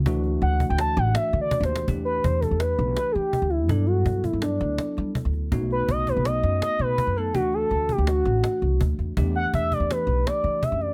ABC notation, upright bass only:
X:1
M:5/4
L:1/16
Q:1/4=165
K:Em
V:1 name="Upright bass" clef=bass
D,,4 D,,3 D,,3 A,,,2 z2 D,2 z ^D,,3 | E,,4 E,,3 E,,3 B,,,2 z2 E,2 z D,,3 | G,,4 G,,3 G,,3 D,,2 z2 G,2 z D,,3 | B,,,4 B,,,3 B,,,3 F,,2 z2 B,,2 z F,,3 |
D,,4 D,,3 D,,3 A,,,2 z2 C,,2 D,,2 E,,2 | E,,4 E,,3 E,,3 B,,,2 z2 E,2 z F,,3 |]